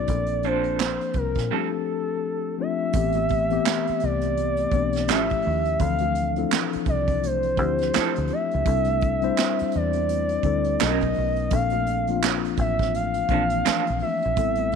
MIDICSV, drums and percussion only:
0, 0, Header, 1, 2, 480
1, 0, Start_track
1, 0, Tempo, 714286
1, 58, Time_signature, 4, 2, 24, 8
1, 9915, End_track
2, 0, Start_track
2, 0, Title_t, "Drums"
2, 50, Note_on_c, 9, 42, 81
2, 55, Note_on_c, 9, 36, 96
2, 118, Note_off_c, 9, 42, 0
2, 122, Note_off_c, 9, 36, 0
2, 178, Note_on_c, 9, 42, 49
2, 245, Note_off_c, 9, 42, 0
2, 289, Note_on_c, 9, 42, 55
2, 356, Note_off_c, 9, 42, 0
2, 429, Note_on_c, 9, 42, 37
2, 496, Note_off_c, 9, 42, 0
2, 538, Note_on_c, 9, 39, 84
2, 543, Note_on_c, 9, 38, 101
2, 605, Note_off_c, 9, 39, 0
2, 610, Note_off_c, 9, 38, 0
2, 679, Note_on_c, 9, 42, 48
2, 746, Note_off_c, 9, 42, 0
2, 763, Note_on_c, 9, 42, 56
2, 768, Note_on_c, 9, 36, 85
2, 830, Note_off_c, 9, 42, 0
2, 835, Note_off_c, 9, 36, 0
2, 907, Note_on_c, 9, 42, 44
2, 912, Note_on_c, 9, 36, 76
2, 925, Note_on_c, 9, 38, 29
2, 974, Note_off_c, 9, 42, 0
2, 980, Note_off_c, 9, 36, 0
2, 992, Note_off_c, 9, 38, 0
2, 1970, Note_on_c, 9, 42, 89
2, 1974, Note_on_c, 9, 36, 111
2, 2037, Note_off_c, 9, 42, 0
2, 2041, Note_off_c, 9, 36, 0
2, 2099, Note_on_c, 9, 42, 52
2, 2117, Note_on_c, 9, 62, 34
2, 2117, Note_on_c, 9, 63, 72
2, 2167, Note_off_c, 9, 42, 0
2, 2184, Note_off_c, 9, 62, 0
2, 2184, Note_off_c, 9, 63, 0
2, 2210, Note_on_c, 9, 42, 65
2, 2222, Note_on_c, 9, 36, 89
2, 2277, Note_off_c, 9, 42, 0
2, 2289, Note_off_c, 9, 36, 0
2, 2352, Note_on_c, 9, 42, 43
2, 2357, Note_on_c, 9, 63, 55
2, 2420, Note_off_c, 9, 42, 0
2, 2424, Note_off_c, 9, 63, 0
2, 2452, Note_on_c, 9, 62, 29
2, 2454, Note_on_c, 9, 42, 78
2, 2461, Note_on_c, 9, 39, 94
2, 2466, Note_on_c, 9, 38, 118
2, 2520, Note_off_c, 9, 62, 0
2, 2521, Note_off_c, 9, 42, 0
2, 2529, Note_off_c, 9, 39, 0
2, 2533, Note_off_c, 9, 38, 0
2, 2601, Note_on_c, 9, 62, 26
2, 2602, Note_on_c, 9, 42, 52
2, 2668, Note_off_c, 9, 62, 0
2, 2669, Note_off_c, 9, 42, 0
2, 2687, Note_on_c, 9, 42, 66
2, 2754, Note_off_c, 9, 42, 0
2, 2831, Note_on_c, 9, 42, 53
2, 2836, Note_on_c, 9, 64, 67
2, 2899, Note_off_c, 9, 42, 0
2, 2904, Note_off_c, 9, 64, 0
2, 2938, Note_on_c, 9, 63, 46
2, 2939, Note_on_c, 9, 42, 72
2, 3005, Note_off_c, 9, 63, 0
2, 3006, Note_off_c, 9, 42, 0
2, 3068, Note_on_c, 9, 42, 55
2, 3084, Note_on_c, 9, 62, 33
2, 3135, Note_off_c, 9, 42, 0
2, 3151, Note_off_c, 9, 62, 0
2, 3166, Note_on_c, 9, 42, 67
2, 3168, Note_on_c, 9, 36, 97
2, 3233, Note_off_c, 9, 42, 0
2, 3236, Note_off_c, 9, 36, 0
2, 3311, Note_on_c, 9, 42, 49
2, 3332, Note_on_c, 9, 38, 36
2, 3378, Note_off_c, 9, 42, 0
2, 3399, Note_off_c, 9, 38, 0
2, 3413, Note_on_c, 9, 62, 34
2, 3413, Note_on_c, 9, 63, 73
2, 3414, Note_on_c, 9, 42, 78
2, 3424, Note_on_c, 9, 39, 95
2, 3428, Note_on_c, 9, 38, 115
2, 3481, Note_off_c, 9, 42, 0
2, 3481, Note_off_c, 9, 62, 0
2, 3481, Note_off_c, 9, 63, 0
2, 3491, Note_off_c, 9, 39, 0
2, 3496, Note_off_c, 9, 38, 0
2, 3560, Note_on_c, 9, 42, 46
2, 3560, Note_on_c, 9, 62, 31
2, 3570, Note_on_c, 9, 36, 85
2, 3627, Note_off_c, 9, 42, 0
2, 3627, Note_off_c, 9, 62, 0
2, 3637, Note_off_c, 9, 36, 0
2, 3642, Note_on_c, 9, 46, 44
2, 3660, Note_on_c, 9, 63, 58
2, 3660, Note_on_c, 9, 64, 60
2, 3710, Note_off_c, 9, 46, 0
2, 3727, Note_off_c, 9, 63, 0
2, 3727, Note_off_c, 9, 64, 0
2, 3798, Note_on_c, 9, 42, 46
2, 3865, Note_off_c, 9, 42, 0
2, 3894, Note_on_c, 9, 42, 92
2, 3897, Note_on_c, 9, 36, 111
2, 3898, Note_on_c, 9, 62, 31
2, 3961, Note_off_c, 9, 42, 0
2, 3964, Note_off_c, 9, 36, 0
2, 3965, Note_off_c, 9, 62, 0
2, 4021, Note_on_c, 9, 42, 56
2, 4035, Note_on_c, 9, 63, 76
2, 4088, Note_off_c, 9, 42, 0
2, 4102, Note_off_c, 9, 63, 0
2, 4133, Note_on_c, 9, 42, 62
2, 4200, Note_off_c, 9, 42, 0
2, 4273, Note_on_c, 9, 42, 41
2, 4275, Note_on_c, 9, 63, 57
2, 4340, Note_off_c, 9, 42, 0
2, 4342, Note_off_c, 9, 63, 0
2, 4375, Note_on_c, 9, 42, 77
2, 4382, Note_on_c, 9, 39, 95
2, 4387, Note_on_c, 9, 38, 117
2, 4442, Note_off_c, 9, 42, 0
2, 4449, Note_off_c, 9, 39, 0
2, 4454, Note_off_c, 9, 38, 0
2, 4518, Note_on_c, 9, 62, 26
2, 4523, Note_on_c, 9, 42, 55
2, 4585, Note_off_c, 9, 62, 0
2, 4590, Note_off_c, 9, 42, 0
2, 4607, Note_on_c, 9, 42, 66
2, 4611, Note_on_c, 9, 36, 105
2, 4674, Note_off_c, 9, 42, 0
2, 4678, Note_off_c, 9, 36, 0
2, 4755, Note_on_c, 9, 42, 54
2, 4756, Note_on_c, 9, 36, 86
2, 4757, Note_on_c, 9, 64, 63
2, 4822, Note_off_c, 9, 42, 0
2, 4824, Note_off_c, 9, 36, 0
2, 4824, Note_off_c, 9, 64, 0
2, 4858, Note_on_c, 9, 62, 29
2, 4858, Note_on_c, 9, 63, 45
2, 4862, Note_on_c, 9, 42, 74
2, 4925, Note_off_c, 9, 62, 0
2, 4925, Note_off_c, 9, 63, 0
2, 4929, Note_off_c, 9, 42, 0
2, 4991, Note_on_c, 9, 42, 52
2, 5002, Note_on_c, 9, 62, 32
2, 5058, Note_off_c, 9, 42, 0
2, 5069, Note_off_c, 9, 62, 0
2, 5088, Note_on_c, 9, 42, 67
2, 5089, Note_on_c, 9, 36, 93
2, 5155, Note_off_c, 9, 42, 0
2, 5157, Note_off_c, 9, 36, 0
2, 5231, Note_on_c, 9, 42, 51
2, 5252, Note_on_c, 9, 38, 36
2, 5298, Note_off_c, 9, 42, 0
2, 5319, Note_off_c, 9, 38, 0
2, 5332, Note_on_c, 9, 42, 85
2, 5332, Note_on_c, 9, 63, 70
2, 5342, Note_on_c, 9, 39, 92
2, 5347, Note_on_c, 9, 38, 119
2, 5400, Note_off_c, 9, 42, 0
2, 5400, Note_off_c, 9, 63, 0
2, 5409, Note_off_c, 9, 39, 0
2, 5414, Note_off_c, 9, 38, 0
2, 5478, Note_on_c, 9, 62, 30
2, 5481, Note_on_c, 9, 42, 45
2, 5545, Note_off_c, 9, 62, 0
2, 5548, Note_off_c, 9, 42, 0
2, 5561, Note_on_c, 9, 42, 59
2, 5581, Note_on_c, 9, 63, 60
2, 5581, Note_on_c, 9, 64, 63
2, 5628, Note_off_c, 9, 42, 0
2, 5648, Note_off_c, 9, 63, 0
2, 5648, Note_off_c, 9, 64, 0
2, 5721, Note_on_c, 9, 42, 47
2, 5788, Note_off_c, 9, 42, 0
2, 5815, Note_on_c, 9, 42, 89
2, 5818, Note_on_c, 9, 36, 109
2, 5882, Note_off_c, 9, 42, 0
2, 5885, Note_off_c, 9, 36, 0
2, 5943, Note_on_c, 9, 42, 54
2, 5956, Note_on_c, 9, 63, 79
2, 6010, Note_off_c, 9, 42, 0
2, 6023, Note_off_c, 9, 63, 0
2, 6054, Note_on_c, 9, 42, 65
2, 6064, Note_on_c, 9, 36, 91
2, 6122, Note_off_c, 9, 42, 0
2, 6132, Note_off_c, 9, 36, 0
2, 6194, Note_on_c, 9, 42, 40
2, 6197, Note_on_c, 9, 63, 57
2, 6261, Note_off_c, 9, 42, 0
2, 6264, Note_off_c, 9, 63, 0
2, 6294, Note_on_c, 9, 62, 33
2, 6296, Note_on_c, 9, 42, 76
2, 6303, Note_on_c, 9, 39, 89
2, 6308, Note_on_c, 9, 38, 120
2, 6362, Note_off_c, 9, 62, 0
2, 6363, Note_off_c, 9, 42, 0
2, 6371, Note_off_c, 9, 39, 0
2, 6376, Note_off_c, 9, 38, 0
2, 6440, Note_on_c, 9, 62, 28
2, 6444, Note_on_c, 9, 42, 55
2, 6507, Note_off_c, 9, 62, 0
2, 6511, Note_off_c, 9, 42, 0
2, 6529, Note_on_c, 9, 42, 68
2, 6596, Note_off_c, 9, 42, 0
2, 6674, Note_on_c, 9, 42, 57
2, 6678, Note_on_c, 9, 64, 62
2, 6741, Note_off_c, 9, 42, 0
2, 6746, Note_off_c, 9, 64, 0
2, 6780, Note_on_c, 9, 42, 73
2, 6780, Note_on_c, 9, 63, 44
2, 6847, Note_off_c, 9, 42, 0
2, 6847, Note_off_c, 9, 63, 0
2, 6913, Note_on_c, 9, 42, 51
2, 6925, Note_on_c, 9, 62, 31
2, 6980, Note_off_c, 9, 42, 0
2, 6992, Note_off_c, 9, 62, 0
2, 7007, Note_on_c, 9, 42, 69
2, 7010, Note_on_c, 9, 36, 94
2, 7075, Note_off_c, 9, 42, 0
2, 7078, Note_off_c, 9, 36, 0
2, 7152, Note_on_c, 9, 42, 51
2, 7219, Note_off_c, 9, 42, 0
2, 7253, Note_on_c, 9, 42, 83
2, 7256, Note_on_c, 9, 63, 71
2, 7262, Note_on_c, 9, 39, 97
2, 7267, Note_on_c, 9, 38, 123
2, 7320, Note_off_c, 9, 42, 0
2, 7323, Note_off_c, 9, 63, 0
2, 7329, Note_off_c, 9, 39, 0
2, 7334, Note_off_c, 9, 38, 0
2, 7397, Note_on_c, 9, 42, 46
2, 7410, Note_on_c, 9, 36, 88
2, 7465, Note_off_c, 9, 42, 0
2, 7478, Note_off_c, 9, 36, 0
2, 7481, Note_on_c, 9, 46, 45
2, 7500, Note_on_c, 9, 63, 62
2, 7500, Note_on_c, 9, 64, 59
2, 7548, Note_off_c, 9, 46, 0
2, 7567, Note_off_c, 9, 63, 0
2, 7567, Note_off_c, 9, 64, 0
2, 7637, Note_on_c, 9, 42, 45
2, 7704, Note_off_c, 9, 42, 0
2, 7732, Note_on_c, 9, 42, 97
2, 7737, Note_on_c, 9, 36, 111
2, 7740, Note_on_c, 9, 62, 31
2, 7740, Note_on_c, 9, 64, 68
2, 7799, Note_off_c, 9, 42, 0
2, 7804, Note_off_c, 9, 36, 0
2, 7807, Note_off_c, 9, 62, 0
2, 7807, Note_off_c, 9, 64, 0
2, 7861, Note_on_c, 9, 42, 55
2, 7876, Note_on_c, 9, 62, 36
2, 7876, Note_on_c, 9, 63, 73
2, 7928, Note_off_c, 9, 42, 0
2, 7943, Note_off_c, 9, 62, 0
2, 7943, Note_off_c, 9, 63, 0
2, 7973, Note_on_c, 9, 42, 66
2, 8041, Note_off_c, 9, 42, 0
2, 8113, Note_on_c, 9, 42, 43
2, 8117, Note_on_c, 9, 63, 56
2, 8180, Note_off_c, 9, 42, 0
2, 8185, Note_off_c, 9, 63, 0
2, 8214, Note_on_c, 9, 42, 75
2, 8222, Note_on_c, 9, 39, 100
2, 8227, Note_on_c, 9, 38, 116
2, 8281, Note_off_c, 9, 42, 0
2, 8289, Note_off_c, 9, 39, 0
2, 8294, Note_off_c, 9, 38, 0
2, 8364, Note_on_c, 9, 42, 51
2, 8431, Note_off_c, 9, 42, 0
2, 8447, Note_on_c, 9, 42, 67
2, 8452, Note_on_c, 9, 36, 101
2, 8514, Note_off_c, 9, 42, 0
2, 8519, Note_off_c, 9, 36, 0
2, 8594, Note_on_c, 9, 42, 52
2, 8597, Note_on_c, 9, 36, 91
2, 8600, Note_on_c, 9, 64, 64
2, 8612, Note_on_c, 9, 38, 35
2, 8661, Note_off_c, 9, 42, 0
2, 8664, Note_off_c, 9, 36, 0
2, 8667, Note_off_c, 9, 64, 0
2, 8680, Note_off_c, 9, 38, 0
2, 8699, Note_on_c, 9, 42, 70
2, 8701, Note_on_c, 9, 62, 28
2, 8701, Note_on_c, 9, 63, 44
2, 8766, Note_off_c, 9, 42, 0
2, 8769, Note_off_c, 9, 62, 0
2, 8769, Note_off_c, 9, 63, 0
2, 8830, Note_on_c, 9, 42, 55
2, 8846, Note_on_c, 9, 62, 31
2, 8897, Note_off_c, 9, 42, 0
2, 8914, Note_off_c, 9, 62, 0
2, 8928, Note_on_c, 9, 42, 67
2, 8930, Note_on_c, 9, 36, 89
2, 8995, Note_off_c, 9, 42, 0
2, 8997, Note_off_c, 9, 36, 0
2, 9070, Note_on_c, 9, 42, 54
2, 9138, Note_off_c, 9, 42, 0
2, 9174, Note_on_c, 9, 42, 81
2, 9177, Note_on_c, 9, 62, 34
2, 9177, Note_on_c, 9, 63, 73
2, 9183, Note_on_c, 9, 39, 92
2, 9188, Note_on_c, 9, 38, 121
2, 9241, Note_off_c, 9, 42, 0
2, 9244, Note_off_c, 9, 62, 0
2, 9244, Note_off_c, 9, 63, 0
2, 9250, Note_off_c, 9, 39, 0
2, 9255, Note_off_c, 9, 38, 0
2, 9319, Note_on_c, 9, 42, 47
2, 9324, Note_on_c, 9, 62, 31
2, 9386, Note_off_c, 9, 42, 0
2, 9392, Note_off_c, 9, 62, 0
2, 9401, Note_on_c, 9, 46, 44
2, 9423, Note_on_c, 9, 63, 59
2, 9423, Note_on_c, 9, 64, 59
2, 9468, Note_off_c, 9, 46, 0
2, 9490, Note_off_c, 9, 63, 0
2, 9490, Note_off_c, 9, 64, 0
2, 9558, Note_on_c, 9, 42, 46
2, 9626, Note_off_c, 9, 42, 0
2, 9652, Note_on_c, 9, 42, 86
2, 9657, Note_on_c, 9, 36, 112
2, 9720, Note_off_c, 9, 42, 0
2, 9724, Note_off_c, 9, 36, 0
2, 9780, Note_on_c, 9, 42, 53
2, 9799, Note_on_c, 9, 62, 34
2, 9799, Note_on_c, 9, 63, 72
2, 9847, Note_off_c, 9, 42, 0
2, 9866, Note_off_c, 9, 62, 0
2, 9866, Note_off_c, 9, 63, 0
2, 9891, Note_on_c, 9, 42, 62
2, 9915, Note_off_c, 9, 42, 0
2, 9915, End_track
0, 0, End_of_file